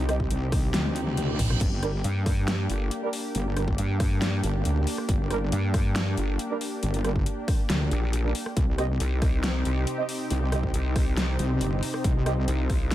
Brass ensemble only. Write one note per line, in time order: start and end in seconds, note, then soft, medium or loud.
0.09 0.14 C4 medium
0.09 0.14 G4 medium
0.09 0.14 D#5 medium
1.83 1.88 G3 medium
1.83 1.88 D4 medium
1.83 1.88 A#4 loud
3.03 3.08 G3 medium
3.03 3.08 D4 medium
3.03 3.08 A#4 loud
3.57 3.62 G3 medium
3.57 3.62 D4 medium
3.57 3.62 A#4 medium
5.30 5.36 G3 loud
5.30 5.36 D4 medium
5.30 5.36 A#4 loud
6.50 6.56 G3 medium
6.50 6.56 D4 medium
6.50 6.56 A#4 loud
7.04 7.10 G3 medium
7.04 7.10 D4 medium
7.04 7.10 A#4 medium
8.24 8.30 G3 medium
8.24 8.30 D4 medium
8.24 8.30 A#4 medium
8.78 8.84 C4 loud
8.78 8.84 G4 medium
8.78 8.84 D#5 loud
9.98 10.03 C4 medium
9.98 10.03 G4 medium
9.98 10.03 D#5 loud
10.52 10.58 C4 medium
10.52 10.58 G4 medium
10.52 10.58 D#5 medium
12.26 12.32 C4 loud
12.26 12.32 G4 medium
12.26 12.32 D#5 loud